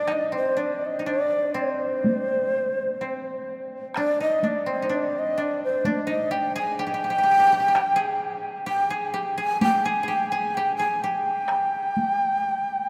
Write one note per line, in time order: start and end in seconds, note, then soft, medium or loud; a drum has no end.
0.00 0.68 G3 medium
0.00 0.32 C4 soft
0.00 0.14 D4 soft
0.00 0.14 D5 medium
0.08 0.63 D#4 medium
0.08 taiko rim soft
0.12 0.35 D#5 medium
0.32 1.54 C4 soft
0.36 0.61 C5 medium
0.57 1.05 D4 medium
0.57 0.87 D5 medium
0.85 1.09 D#5 medium
0.99 1.12 D#4 soft
1.06 3.49 D4 medium
1.06 1.58 D5 medium
1.54 3.01 C4 medium
1.54 3.49 C5 medium
2.04 taiko high medium
3.01 4.66 C4 medium
3.96 4.26 D4 medium
3.96 4.19 D5 medium
3.96 taiko rim medium
4.20 4.50 D#4 medium
4.20 4.48 D#5 medium
4.43 4.88 D4 medium
4.43 taiko high soft
4.47 4.69 D5 medium
4.66 7.26 C4 medium
4.72 4.96 C5 medium
4.82 4.95 D#4 soft
4.89 5.37 D4 medium
4.95 5.20 D5 medium
5.19 5.43 D#5 medium
5.38 5.85 D4 medium
5.42 5.63 D5 medium
5.64 5.88 C5 medium
5.85 6.13 D4 medium
5.85 6.08 D5 medium
5.85 taiko high medium
6.07 8.41 D#4 medium
6.07 6.33 D#5 medium
6.31 6.62 G4 medium
6.31 6.56 G5 medium
6.56 6.85 G#4 medium
6.56 6.83 G#5 medium
6.79 6.86 G4 medium
6.79 8.42 G5 loud
6.87 6.94 G4 medium
6.94 7.04 G4 medium
7.04 7.10 G4 soft
7.10 7.18 G4 medium
7.18 7.23 G4 medium
7.24 7.31 G4 medium
7.31 7.39 G4 soft
7.40 7.47 G4 medium
7.47 7.52 G4 soft
7.52 7.60 G4 medium
7.60 7.68 G4 soft
7.68 7.75 G4 medium
7.75 8.02 G4 medium
7.75 taiko rim medium
7.96 8.72 G#4 medium
8.66 8.96 G4 medium
8.66 8.91 G5 medium
8.90 9.20 G#4 medium
8.90 9.15 G#5 medium
9.14 9.44 G4 medium
9.14 9.37 G5 medium
9.38 9.67 G#4 medium
9.38 9.61 G#5 loud
9.61 9.91 G4 medium
9.61 9.86 G5 loud
9.61 taiko high medium
9.85 10.03 G#4 medium
9.85 10.08 G#5 medium
10.03 10.14 G#4 medium
10.08 10.38 G4 medium
10.08 10.32 G5 medium
10.31 10.63 G#4 medium
10.31 10.56 G#5 medium
10.54 10.85 G4 medium
10.54 10.76 G5 medium
10.77 11.10 G#4 medium
10.77 11.04 G#5 medium
11.02 12.89 G4 medium
11.02 12.89 G5 medium
11.48 taiko rim medium
11.97 taiko high soft